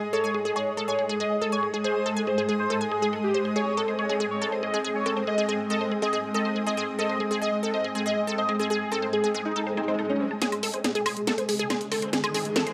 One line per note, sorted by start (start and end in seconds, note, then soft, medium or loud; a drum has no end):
0.00 10.40 G#3 medium
0.00 10.40 G#3 loud
0.00 3.58 G#4 medium
0.00 10.42 G#4 medium
0.00 10.42 D#5 medium
0.00 12.73 D#6 medium
0.13 0.16 A4 loud
0.13 0.32 C#5 loud
0.24 0.29 G#5 loud
0.34 0.38 G#4 medium
0.45 0.48 G#4 loud
0.56 0.61 G#4 loud
0.56 0.70 C#5 medium
0.77 0.81 A4 loud
0.88 1.03 C#5 medium
0.88 0.93 G#5 loud
0.99 1.02 G#4 medium
1.09 1.13 G#4 loud
1.20 1.26 G#4 loud
1.20 1.35 D#5 medium
1.42 1.45 A4 loud
1.52 1.67 C#5 medium
1.52 1.58 G#5 loud
1.63 1.66 G#4 medium
1.74 1.77 G#4 loud
1.84 1.90 G#4 loud
1.84 2.04 C5 loud
2.06 2.09 A4 loud
2.17 2.22 G#5 loud
2.27 2.31 G#4 medium
2.27 2.42 C5 medium
2.38 2.41 G#4 loud
2.49 2.54 G#4 loud
2.59 2.74 C5 loud
2.70 2.73 A4 loud
2.81 2.86 G#5 loud
2.92 2.95 G#4 medium
2.92 3.06 G#4 loud
3.02 3.08 G#4 loud
3.13 3.18 A4 medium
3.24 3.38 G4 medium
3.34 3.40 C5 loud
3.45 3.51 C5 medium
3.56 10.44 C4 medium
3.56 3.61 G#4 loud
3.56 3.75 C#5 loud
3.77 3.81 A4 loud
3.88 3.93 C5 medium
3.99 4.02 G#4 medium
3.99 4.13 C#5 medium
4.09 4.13 G#4 loud
4.20 4.26 G#4 loud
4.31 4.45 C#5 loud
4.42 4.45 A4 loud
4.52 4.58 C5 medium
4.63 4.66 G#4 medium
4.63 4.78 D#5 medium
4.74 4.77 G#4 loud
4.84 4.90 G#4 loud
4.95 5.10 C#5 medium
5.06 5.13 C4 medium
5.06 5.09 A4 loud
5.17 5.23 C4 medium
5.17 5.22 C5 medium
5.27 5.31 G#4 medium
5.27 5.47 D#5 loud
5.38 5.41 G#4 loud
5.49 5.60 C4 medium
5.49 5.54 G#4 loud
5.70 5.73 A4 loud
5.70 5.85 D#5 loud
5.81 5.86 C5 medium
5.92 5.95 G#4 medium
6.02 6.13 C4 medium
6.02 6.06 G#4 loud
6.02 6.17 D#5 medium
6.13 6.18 G#4 loud
6.34 6.38 A4 loud
6.34 6.49 D#5 medium
6.45 6.51 C5 medium
6.56 6.59 G#4 medium
6.67 6.70 G#4 loud
6.67 6.81 D#5 loud
6.77 7.20 C4 loud
6.77 6.83 G#4 loud
6.99 7.02 A4 loud
6.99 7.18 D#5 loud
7.09 7.15 C5 medium
7.20 7.23 G#4 medium
7.31 7.34 G#4 loud
7.42 7.47 G#4 loud
7.42 7.56 D#5 medium
7.63 7.66 A4 loud
7.74 7.79 C5 medium
7.74 7.88 D#5 medium
7.84 7.88 G#4 medium
7.95 7.98 G#4 loud
8.06 8.11 G#4 loud
8.06 8.20 D#5 medium
8.27 8.31 A4 loud
8.38 8.43 C5 medium
8.38 8.53 D#5 loud
8.49 8.56 C4 medium
8.49 8.52 G#4 medium
8.59 8.66 C4 medium
8.59 8.63 G#4 loud
8.70 8.76 G#4 loud
8.70 8.90 G#4 loud
8.92 9.03 C4 medium
8.92 8.95 A4 loud
9.02 9.08 C5 medium
9.13 9.16 G#4 medium
9.13 9.28 G#4 medium
9.24 9.27 G#4 loud
9.34 9.41 G#3 medium
9.34 9.40 G#4 loud
9.45 9.52 G#3 medium
9.45 9.60 D#4 loud
9.56 9.59 A4 loud
9.56 swell medium
9.67 9.72 C5 medium
9.77 9.84 C4 medium
9.77 9.92 D#4 loud
9.77 9.81 G#4 medium
9.88 9.95 C4 medium
9.88 9.93 C5 medium
9.99 10.06 D#4 medium
9.99 10.04 A4 medium
10.09 10.24 C#4 medium
10.09 10.16 D#4 medium
10.20 10.23 C5 medium
10.31 10.39 A5 medium
10.42 12.73 G#3 medium
10.42 12.73 G#3 loud
10.42 10.47 G#4 loud
10.42 12.73 G#4 medium
10.42 snare soft
10.42 closed hi-hat medium
10.42 riser medium
10.50 12.73 G#4 medium
10.50 closed hi-hat medium
10.50 high woodblock soft
10.63 10.66 A4 loud
10.63 open hi-hat loud
10.69 12.73 D#5 medium
10.74 10.79 C5 medium
10.74 closed hi-hat medium
10.84 10.88 G#4 medium
10.84 snare medium
10.84 closed hi-hat medium
10.95 10.98 G#4 loud
10.95 closed hi-hat medium
11.06 11.11 G#4 loud
11.06 open hi-hat loud
11.06 high woodblock medium
11.17 closed hi-hat medium
11.27 11.31 A4 loud
11.27 snare medium
11.27 closed hi-hat medium
11.38 11.43 C5 medium
11.38 closed hi-hat medium
11.49 11.52 G#4 medium
11.49 open hi-hat loud
11.59 11.63 G#4 loud
11.59 closed hi-hat medium
11.70 11.76 G#4 loud
11.70 snare medium
11.70 closed hi-hat medium
11.70 high woodblock soft
11.81 closed hi-hat medium
11.92 11.98 C4 medium
11.92 11.95 A4 loud
11.92 open hi-hat medium
12.02 12.09 C4 medium
12.02 12.08 C5 medium
12.02 closed hi-hat medium
12.13 12.16 G#4 medium
12.13 snare medium
12.13 closed hi-hat medium
12.24 12.27 G#4 loud
12.24 closed hi-hat medium
12.24 high woodblock medium
12.34 12.46 C4 medium
12.34 12.40 G#4 loud
12.34 open hi-hat loud
12.45 closed hi-hat medium
12.56 12.59 A4 loud
12.56 snare medium
12.56 closed hi-hat medium
12.67 12.72 C5 medium
12.67 closed hi-hat medium